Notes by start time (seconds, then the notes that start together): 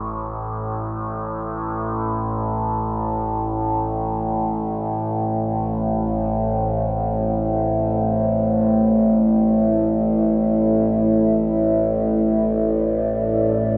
Already playing: A1 A2
1.85 A1 A2 A3
3.33 E4
5.07 C5
5.77 E5
11.76 D5